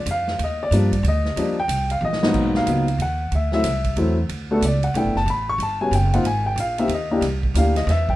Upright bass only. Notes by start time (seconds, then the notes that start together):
0.06 F2
0.39 D#2
0.71 G2
1.03 D2
1.36 D#2
1.68 C2
2.01 A#1
2.34 B1
2.66 C#2
2.98 D#2
3.32 D2
3.64 C2
3.96 E2
4.29 D2
4.61 C#2
4.94 B1
5.04 G1
5.15 F#1
5.26 A1
5.58 G1
5.91 F#1
6.24 G#1
6.56 A#1
6.88 D#2
7.21 C2
7.54 D2
7.87 E2